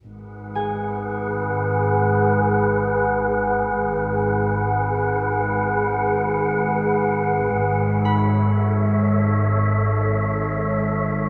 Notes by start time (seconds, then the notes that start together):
0.04 G#1 G#2 G#4 B4 F#5
0.55 G#4 G#5
3.82 G#1 G#2 G#4 B4 F#5
7.58 G#1 G#2 A4 C#5 E5
8.05 B5